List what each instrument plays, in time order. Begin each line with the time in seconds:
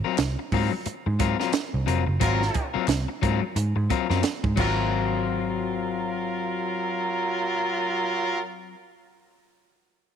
0.04 clean electric guitar F#3 C4 F4 A#4
0.18 picked electric bass C2, muted clean electric guitar stroke, snare, clap, closed hi-hat
0.39 muted clean electric guitar stroke
0.52 picked electric bass G#2, clean electric guitar F#3 C4 F4 A#4, kick, open hi-hat
0.72 muted clean electric guitar stroke
0.86 muted clean electric guitar stroke, muted picked electric bass stroke, closed hi-hat
1.06 picked electric bass G#2, muted clean electric guitar stroke
1.19 clean electric guitar F#3 C4 F4 A#4, kick, closed hi-hat
1.40 clean electric guitar F#3 C4 F4 A#4, snare
1.53 muted clean electric guitar stroke, snare, clap, closed hi-hat
1.74 picked electric bass C2
1.86 picked electric bass F1, clean electric guitar F#3 C4 F4 A#4, closed hi-hat
2.07 picked electric bass F#1, muted clean electric guitar stroke
2.20 picked electric bass G#1, clean electric guitar F#3 C4 F4 A#4, horn section F#3 F4 A#4, kick, closed hi-hat
2.42 snare
2.54 muted clean electric guitar stroke, kick, closed hi-hat
2.74 clean electric guitar F#3 C4 F4 A#4, muted picked electric bass stroke
2.88 picked electric bass C2, muted clean electric guitar stroke, snare, clap, closed hi-hat
3.08 muted clean electric guitar stroke
3.22 picked electric bass G#2, clean electric guitar F#3 C4 F4 A#4, kick, closed hi-hat
3.42 muted clean electric guitar stroke
3.56 picked electric bass G#2, muted clean electric guitar stroke, closed hi-hat
3.76 picked electric bass G#2, muted clean electric guitar stroke
3.90 clean electric guitar F#3 C4 F4 A#4, kick, closed hi-hat
4.10 picked electric bass F#2, clean electric guitar F#3 C4 F4 A#4, snare
4.23 muted clean electric guitar stroke, snare, clap, closed hi-hat
4.44 picked electric bass G#2, muted clean electric guitar stroke, kick
4.56 picked electric bass G#1, clean electric guitar F#3 C4 F4, horn section F#3 F4 A#4, kick, clap, crash
4.61 clean electric guitar A#4